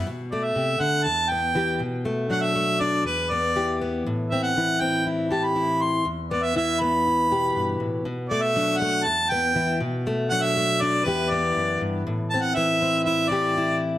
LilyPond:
<<
  \new Staff \with { instrumentName = "Harmonica" } { \time 4/4 \key e \minor \tempo 4 = 120 r8 d''16 e''8. fis''8 a''8 g''4 r8 | r8 fis''16 e''8. d''8 b'8 d''4 r8 | r8 e''16 fis''8. g''8 r8 a''16 b''8. c'''8 | r8 d''16 e''16 e''8 b''2 r8 |
r8 d''16 e''8. fis''8 a''8 g''4 r8 | r8 fis''16 e''8. d''8 b'8 d''4 r8 | r8 a''16 fis''16 e''4 e''8 d''4 r8 | }
  \new Staff \with { instrumentName = "Steel-string acoustic guitar" } { \time 4/4 \key e \minor << { r8 a4. r8 b8 g'8 r8 | a8 d'8 a8 d'8 r8 b8 g'8 b8 | r8 c'8 e'8 c'8 e'8 g'8 e'4 | r8 b8 e'8 b8 e'8 g'4. |
r8 a8 d'8 a8 r8 b8 e'8 r8 | a8 d'8 a8 d'8 <e b e' g'>8 b4. | r8 c'8 e'8 c'8 e'8 g'8 e'4 | } \\ { b,4 c8 d8 e,4 e8 b,8~ | b,8 fis4. e,4 e4 | a,4 e4. e4. | e,4 e4. b,8 g,8 a,8 |
b,4 fis4 e,4 e8 b,8~ | b,8 fis4. e,4 fis,8 g,8 | a,4 e4. e4. | } >> }
>>